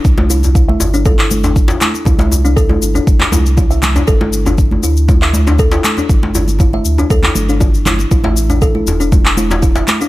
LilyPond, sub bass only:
\new Staff \with { instrumentName = "Sub bass" } { \clef bass \time 4/4 \key g \major \tempo 4 = 119 c,4. g,,2 r8 | c,4. g,,8 g,,8 c,4. | g,,4. d,2 r8 | g,,4. d,8 d,8 g,,4. |
a,,4. e,,2 r8 | }